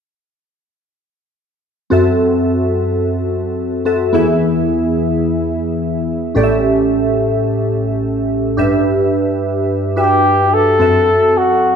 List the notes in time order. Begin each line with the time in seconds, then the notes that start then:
1.90 F#2 C4 F#4 A4 E5
3.85 C4 F#4 A4 E5
4.13 E2 E3 B3 E4 G#4 E5
6.35 A1 A2 C#4 G4 A4 D5
6.43 E5
8.57 G2 D4 G4 B4 E5
9.96 D4 F#4 G4 B4 E5
10.03 G4
10.53 A4
10.79 F#2 C4 F#4 A4 E5
11.37 F#4